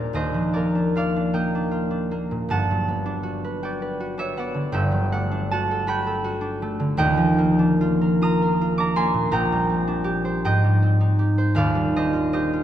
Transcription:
Already playing: D#1 D#2 A#2 G3 A#3 D4 G#4 A#4 D5 D#5
0.13 D#1 D#2 C5 D#5
0.34 F3
0.53 A#3 A#4 D5
0.75 D4
0.95 F4 D5 F5
1.16 D4
1.33 A#3 D#5 G5
1.55 D4
1.71 F4
1.91 D4
2.11 A#3
2.31 A#2
2.48 G1 G2 F#5 A5
2.71 F#3
2.88 B3
3.06 D4
3.23 F#4
3.44 B4
3.63 F#4 D5 G5
3.82 B4
4.00 F#4
4.18 D4 C#5 E5
4.37 B3 D5 F#5
4.54 D3
4.72 G1 G2 E5 G5
4.92 F#3
5.12 A3 D5 F#5
5.31 D4
5.51 F#4 F#5 A5
5.71 A4
5.87 F#4 G5 B5
6.06 A4
6.24 F#4
6.41 D4
6.62 A3
6.80 D3
6.97 D#1 D#2 D#5 G5
7.17 F3
7.38 A#3
7.59 D4
7.81 F4
8.01 A#4
8.22 F4 A#5 D#6
8.42 A#4
8.61 F4
8.78 D4 A#5 D6
8.96 A#3 G#5 C6
9.14 A#2
9.31 A#1 A#2 G5 A#5
9.52 G3
9.70 C4
9.88 D4
10.04 G4
10.25 C5
10.45 G#2 D#5 G5
10.64 G3
10.82 C4
11.01 D#4
11.19 G4
11.38 C5
11.55 D#1 D#2 D5 F5
11.75 G3
11.96 D4 C5 D#5
12.13 F4
12.33 G4 C5 D#5
12.53 F4

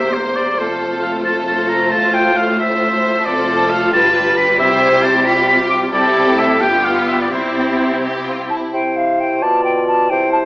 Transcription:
Already playing: E1 E2 A#3 G4 C5 E5
0.13 C5
0.36 D5
0.58 F1 F2 A3 F4 A4 C5
1.02 F5
1.25 A4 A5
1.47 A5
1.69 A#5
1.91 A1 A2 F4 A5
2.14 G5
2.36 F5
2.59 C5 E5
3.25 F1 F2 A3 F4 A4 C5 D5
3.70 F5
3.92 G1 G2 G3 G4 B4 A5
4.15 A5
4.37 B5
4.59 C2 C3 E4 C5 E5
5.03 A5
5.26 F4 G4 B5
5.48 B5
5.70 D6
5.93 C2 C3 G3 E4 G4 A4 D5
6.27 A3
6.39 E5
6.61 G1 G2 B3 F4 G4 G5
6.85 F5
7.08 E5
7.21 D5
7.31 C2 C3 C4 E4 G4 C5
8.02 G4
8.27 F4
8.50 E4 A5
8.73 C3 E4 C5 G5
8.97 F5
9.20 G5
9.42 B2 F4 D5 A5
9.64 G5
9.87 A5
10.10 C3 E4 C5 G5
10.32 A5

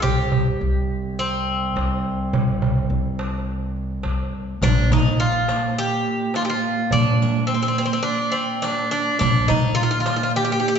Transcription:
0.02 C2 G4, darbuka dum
0.32 darbuka dum
0.61 C2
1.19 C4
1.76 C2, darbuka tek
2.33 C2, darbuka dum
2.62 darbuka dum
2.90 C2, darbuka ka
3.05 darbuka ka
3.19 darbuka tek
3.33 darbuka ka
3.47 darbuka ka
3.76 darbuka ka
3.91 darbuka ka
4.03 C2, darbuka tek
4.62 A#1 A#2 D4, riq, darbuka dum
4.90 A#2 D#4, riq, darbuka dum
5.20 F4
5.49 riq, darbuka tek
5.63 darbuka ka
5.78 G4, riq
6.34 F4, riq, darbuka tek
6.45 G4
6.50 F4
6.91 A#2 D4, riq, darbuka dum
7.22 riq
7.47 C4
7.54 C4
7.62 C4
7.68 C4
7.78 C4, riq
7.86 C4
7.93 C4, darbuka ka
8.03 D4
8.08 riq
8.32 C4
8.62 D4, riq, darbuka tek
8.91 D4
9.19 A#1 A#2 D4, riq, darbuka dum
9.48 A#2 D#4, riq, darbuka dum
9.75 F4
9.83 F4
9.91 F4
10.00 F4
10.06 F4, riq, darbuka tek
10.16 F4, darbuka ka
10.23 F4
10.36 G4, riq
10.45 G4
10.52 G4
10.60 G4
10.68 G4
10.75 G4

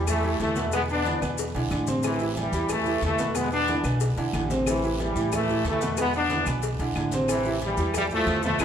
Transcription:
Already playing: E2 E3 E4 G4
0.07 E3 A3, cowbell, high conga, low conga, low agogo, long guiro, claves, maracas
0.23 E3 E4 G4, high conga, maracas
0.39 E2 E3 A3, cowbell, high conga, low timbale, low agogo, short guiro, maracas
0.56 B2 B3 B4, cowbell, high conga, short guiro, maracas
0.72 B2 G#3 B3 B4, cowbell, high conga, low agogo, long guiro, claves, maracas
0.89 B3 D4, high conga, low agogo, maracas
1.05 D3 D4 E4, cowbell, high conga, low agogo, short guiro, maracas
1.21 E2 B2 B3 B4, high conga, low agogo, short guiro, claves, maracas
1.38 cowbell, high conga, long guiro, maracas
1.54 B1 D3 D4 E4, cowbell, low agogo, maracas
1.70 A1 D3 D4 E4, cowbell, high conga, low agogo, short guiro, claves, maracas
1.87 C3 C4 C5, cowbell, high conga, short guiro, maracas
2.03 C3 E3, cowbell, high conga, low agogo, long guiro, claves, maracas
2.20 E3 E4 G4, high conga, maracas
2.36 E3 G3, cowbell, high conga, low agogo, short guiro, maracas
2.52 E2 E3 E4 G4, high conga, short guiro, maracas
2.69 E3 A3, cowbell, high conga, low conga, low agogo, long guiro, claves, maracas
2.86 E3 E4 G4, high conga, maracas
3.02 E2 E3 A3, cowbell, high conga, low timbale, low agogo, short guiro, maracas
3.18 B2 B3 B4, cowbell, high conga, short guiro, maracas
3.34 B2 G#3 B3 B4, cowbell, high conga, low agogo, long guiro, claves, maracas
3.51 B3 D4, high conga, low agogo, maracas
3.68 D3 D4 E4, cowbell, high conga, low agogo, short guiro, maracas
3.84 B1 B2 B3 B4, high conga, low agogo, short guiro, claves, maracas
4.00 cowbell, long guiro, maracas
4.16 B1 D3 D4 E4, cowbell, high conga, low agogo, maracas
4.33 A1 D3 D4 E4, cowbell, high conga, low agogo, short guiro, claves, maracas
4.50 C3 C4 C5, cowbell, high conga, short guiro, maracas
4.66 C3 E3, cowbell, high conga, low agogo, long guiro, claves, maracas
4.83 E3 E4 G4, high conga, maracas
4.99 E3 G3, cowbell, high conga, low agogo, short guiro, maracas
5.15 A2 E3 E4 G4, high conga, short guiro, maracas
5.32 E3 A3, cowbell, high conga, low conga, low agogo, long guiro, claves, maracas
5.49 E3 E4 G4, high conga, low conga, maracas
5.64 E2 E3 A3, cowbell, high conga, low agogo, short guiro, maracas
5.81 B2 B3 B4, cowbell, high conga, short guiro, maracas
5.97 B2 G#3 B3 B4, cowbell, high conga, low agogo, long guiro, claves, maracas
6.13 B3 D4, high conga, low agogo, maracas
6.30 D3 D4 E4, cowbell, high conga, low agogo, short guiro, maracas
6.46 B1 B2 B3 B4, high conga, low agogo, short guiro, claves, maracas
6.62 cowbell, high conga, long guiro, maracas
6.79 B1 D3 D4 E4, cowbell, low agogo, maracas
6.95 A1 D3 D4 E4, cowbell, high conga, low timbale, low agogo, short guiro, claves, maracas
7.11 C3 C4 C5, cowbell, high conga, short guiro, maracas
7.28 C3 E3, cowbell, high conga, low agogo, long guiro, claves, maracas
7.45 E3 E4 G4, high conga, maracas
7.61 E3 G3, cowbell, high conga, low agogo, short guiro, maracas
7.77 E2 E3 E4 G4, high conga, short guiro, maracas
7.94 E3 G3, cowbell, high conga, low conga, low agogo, long guiro, claves, maracas
8.10 F3 G3 A3 E4 G4, high conga, low conga, maracas
8.26 E2, cowbell, high conga, low agogo, short guiro, maracas
8.43 B2 F3 A3 B3 B4, cowbell, high conga, short guiro, maracas
8.59 E2 E3 G#3 B3 D4 E4, cowbell, high conga, high timbale, long guiro, claves, maracas

